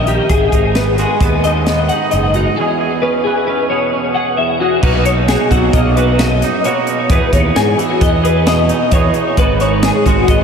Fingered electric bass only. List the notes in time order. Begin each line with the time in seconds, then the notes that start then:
Already playing: A#1
0.30 G#1
0.53 G#1
1.20 D#2
2.13 F#1
4.83 B1
5.51 B1
5.73 B1
7.09 E2
7.32 D#2
7.56 G#2
8.01 E2
8.92 E2
9.38 G#1
10.06 G#1
10.28 G#1